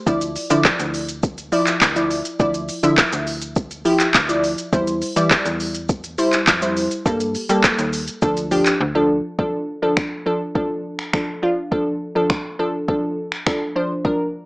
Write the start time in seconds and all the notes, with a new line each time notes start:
0.06 D2 F3 E4 D5, kick, shaker
0.21 closed hi-hat, shaker
0.36 open hi-hat, shaker
0.50 D3 F3 E4 D5, closed hi-hat, shaker
0.65 kick, snare, clap, shaker
0.80 D2, closed hi-hat, shaker
0.94 open hi-hat, shaker
1.09 closed hi-hat, shaker
1.23 kick, shaker
1.38 closed hi-hat, shaker
1.52 F3 E4 D5, open hi-hat, shaker
1.67 clap, closed hi-hat, shaker
1.81 D2, kick, snare, clap, shaker
1.96 F3 E4 D5, closed hi-hat, shaker
2.11 open hi-hat, shaker
2.25 closed hi-hat, shaker
2.39 D2 F3 E4 D5, kick, shaker
2.54 closed hi-hat, shaker
2.69 open hi-hat, shaker
2.83 D3 F3 E4 E5, closed hi-hat, shaker
2.98 kick, snare, clap, shaker
3.13 D2, closed hi-hat, shaker
3.27 open hi-hat, shaker
3.42 closed hi-hat, shaker
3.56 kick, shaker
3.71 closed hi-hat, shaker
3.85 F3 E4 G4, open hi-hat, shaker
4.00 clap, closed hi-hat, shaker
4.14 D2, kick, snare, clap, shaker
4.29 F3 E4 D5, closed hi-hat, shaker
4.44 open hi-hat, shaker
4.58 closed hi-hat, shaker
4.72 E2 G3 E4 C5, kick, shaker
4.87 closed hi-hat, shaker
5.02 open hi-hat, shaker
5.16 E3 G3 E4 D5, closed hi-hat, shaker
5.31 kick, snare, clap, shaker
5.46 E2, closed hi-hat, shaker
5.60 open hi-hat, shaker
5.75 closed hi-hat, shaker
5.89 kick, shaker
6.04 closed hi-hat, shaker
6.18 G3 E4 C5, open hi-hat, shaker
6.33 clap, closed hi-hat, shaker
6.47 F2, kick, snare, clap, shaker
6.62 G3 E4 C5, closed hi-hat, shaker
6.77 open hi-hat, shaker
6.91 closed hi-hat, shaker
7.06 G2 G3 A#3 A4, kick, shaker
7.20 closed hi-hat, shaker
7.35 open hi-hat, shaker
7.49 G3 A#3 A4, closed hi-hat, shaker
7.64 kick, snare, clap, shaker
7.79 D#2, closed hi-hat, shaker
7.93 open hi-hat, shaker
8.08 closed hi-hat, shaker
8.22 D2 F3 D4 A4, kick, shaker
8.37 closed hi-hat, shaker
8.51 F3 D4 G4, open hi-hat, shaker
8.66 clap, closed hi-hat, shaker
8.81 D2
8.95 F3 D4 A4
9.39 F3 D4 A4, kick
9.82 F3 D4 A4
9.97 finger snap, kick
10.26 F3 D4 A4
10.55 F3 D4 A4, kick
10.99 finger snap
11.13 F3 D4 A4, finger snap, kick
11.42 F3 D4 F4
11.71 F3 D4 A4, kick
12.15 F3 D4 A4
12.30 finger snap, kick
12.59 F3 D4 A4
12.88 F3 D4 A4, kick
13.32 finger snap
13.46 F3 D4 A4, finger snap, kick
13.76 F3 D4 C5
14.05 F3 D4 A#4, kick